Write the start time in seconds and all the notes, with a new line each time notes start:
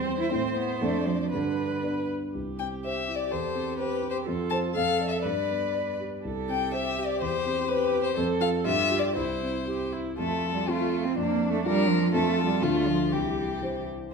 Already playing: E2 G3 C4 G4 C5
0.20 E4
0.32 A2 A3 C4 E4 C5
0.57 B3
0.81 F2 A3 D4 D5
1.07 F3
1.32 G2 D3 B4
1.83 B3 D4 D5
2.35 C2 G4
2.59 C4 G5
2.84 G4 C5 E5
3.08 E4
3.15 D5
3.31 E2 A4 C5
3.55 C4
3.78 G4 B4 C5
4.03 G4
4.10 C5
4.25 F2 F4 A4
4.50 A4 C5 A5
4.73 F2 A4 F5
5.00 A4 D5
5.08 E5
5.22 G2 B4 D5
5.51 B3
5.75 D5
6.00 G4
6.22 C2 G4 A4
6.49 C4 G5
6.73 G4 C5 E5
6.98 G4
7.06 D5
7.22 E2 C5
7.46 C4
7.68 G4 B4 C5
7.92 G4
8.04 C5
8.17 F2 A4
8.41 F4 A4 F5
8.65 G2 F4 G4 E5
8.91 F4 G4
8.99 D5
9.15 C2 E4 C5
9.42 C4
9.67 G4
9.93 E4
10.17 F2 A3 F4 A4
10.54 G3
10.67 A3 C4 F4
11.04 C4
11.17 F2 A#3 D4
11.51 A3
11.65 G3 D4 F4 A#4
11.88 F3
12.12 F2 A3 C4 F4 A4
12.46 G3
12.62 D2 A3 D4 F4 A4
12.88 F3
13.12 C2 E3 G4
13.62 E4 G4 C5